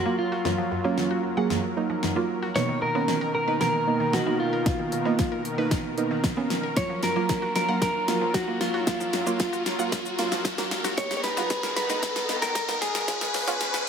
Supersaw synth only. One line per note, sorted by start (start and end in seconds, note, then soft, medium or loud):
0.00 2.52 F#3 medium
0.00 2.52 F4 medium
0.00 10.94 A#4 medium
2.55 6.73 B2 medium
2.55 6.73 D#3 medium
6.77 10.94 F#3 medium
6.77 8.85 F4 medium
8.87 10.96 F4 medium
10.98 13.06 D#3 medium
10.98 13.06 B3 medium
10.98 13.06 A#5 medium
13.08 13.89 F3 medium
13.08 13.89 C#4 medium
13.08 13.89 B4 medium